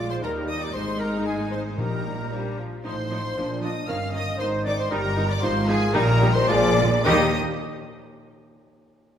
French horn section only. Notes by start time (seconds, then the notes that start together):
Already playing: G#3 F4
0.23 G3 D#4
0.74 G#3 D#4
1.79 G3 D#4
2.31 F3 D4
2.85 F3 D#4
3.37 D4
3.88 D#3 C#4
4.40 D#4
4.91 G4
5.42 F4
5.94 D#3 G4
6.48 F3 G#4
7.05 G3 A#4